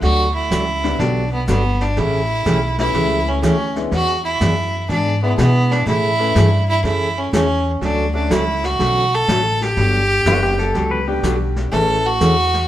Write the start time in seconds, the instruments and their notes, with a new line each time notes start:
0.02 upright bass D2, steel-string acoustic guitar D3 F#3 B3 D4 G4, fiddle F#4, brush sweep, kick, snare
0.34 fiddle E4
0.51 upright bass C#2, steel-string acoustic guitar D3 F#3 B3 D4 G4, kick, snare, hi-hat pedal
0.84 upright piano D3 F#3 G3 B3 D4, snare
0.99 upright bass B1, steel-string acoustic guitar D3 F#3 B3 D4 G4, fiddle D4, brush sweep, kick, snare
1.33 fiddle B3
1.47 upright bass G1, steel-string acoustic guitar D3 F#3 B3 D4 G4, fiddle B3, kick, snare, hi-hat pedal
1.80 fiddle D4, snare
1.96 upright bass A1, steel-string acoustic guitar C#3 E3 A3 C#4 G4, fiddle E4, brush sweep, kick, snare
2.46 upright bass B1, steel-string acoustic guitar C#3 E3 A3 C#4 G4, kick, snare, hi-hat pedal
2.78 upright piano E3 G3 A3 C#4 E4, fiddle E4, snare
2.94 upright bass C#2, steel-string acoustic guitar C#3 E3 A3 C#4 G4, brush sweep, kick, snare
3.28 fiddle C#4
3.42 upright bass D2, steel-string acoustic guitar C#3 E3 A3 C#4 G4, fiddle C#4, kick, snare, hi-hat pedal
3.76 upright piano E3 G#3 B3 D4 E4, snare
3.91 upright bass E2, steel-string acoustic guitar E3 B3 D4 G#4, fiddle F#4, brush sweep, kick, snare
4.25 fiddle E4
4.40 upright bass F#2, steel-string acoustic guitar E3 B3 D4 G#4, kick, snare, hi-hat pedal
4.89 upright bass G#2, steel-string acoustic guitar E3 B3 D4 G#4, fiddle D4, brush sweep, kick, snare
5.22 upright piano E3 G#3 B3 D4 E4, fiddle B3
5.37 upright bass B2, steel-string acoustic guitar E3 B3 D4 G#4, fiddle B3, kick, snare, hi-hat pedal
5.71 fiddle D4, snare
5.86 upright bass A2, steel-string acoustic guitar C#3 E3 A3 C#4 A4, fiddle E4, brush sweep, kick, snare
6.19 upright piano E3 A3 C#4 E4 A4
6.35 upright bass G2, steel-string acoustic guitar C#3 E3 A3 C#4 A4, kick, snare, hi-hat pedal
6.69 fiddle E4
6.84 upright bass F#2, steel-string acoustic guitar C#3 E3 A3 C#4 A4, fiddle E4, brush sweep, kick, snare
7.18 fiddle C#4
7.33 upright bass E2, steel-string acoustic guitar C#3 E3 A3 C#4 A4, fiddle C#4, kick, snare, hi-hat pedal
7.81 upright bass D2, steel-string acoustic guitar D3 F#3 A3 C#4 F#4, fiddle D4, brush sweep, kick, snare
8.14 upright piano F#3 A3 C#4 D4 F#4, fiddle D4
8.30 upright bass C#2, steel-string acoustic guitar D3 F#3 A3 C#4 F#4, fiddle E4, kick, snare, hi-hat pedal
8.64 fiddle F#4, snare
8.79 upright bass B1, steel-string acoustic guitar D3 F#3 A3 C#4 F#4, brush sweep, kick, snare
9.15 fiddle A4
9.28 upright bass A1, steel-string acoustic guitar D3 F#3 A3 C#4 F#4, kick, snare, hi-hat pedal
9.61 fiddle G4, snare
9.77 upright bass G1, steel-string acoustic guitar D3 F#3 B3 D4 G4, brush sweep, kick, snare
10.26 upright bass F#1, steel-string acoustic guitar D3 F#3 B3 D4 G4, upright piano G3 B3 D4 F#4 G4, pedal steel guitar F#4, kick, snare, hi-hat pedal
10.43 pedal steel guitar G4
10.59 pedal steel guitar A4, snare
10.74 upright bass C#2, steel-string acoustic guitar D3 F#3 B3 D4 G4, brush sweep, kick, snare
10.91 pedal steel guitar B4
11.08 upright piano G3 B3 D4 F#4 G4, pedal steel guitar G4
11.23 upright bass B1, steel-string acoustic guitar D3 F#3 B3 D4 G4, kick, snare, hi-hat pedal
11.56 snare
11.72 upright bass A1, steel-string acoustic guitar C#3 E3 A3 C#4 A4, upright piano E3 A3 C#4 E4 A4, fiddle A4, brush sweep, kick, snare
12.06 fiddle F#4
12.20 upright bass E2, steel-string acoustic guitar C#3 E3 A3 C#4 A4, kick, snare, hi-hat pedal
12.54 snare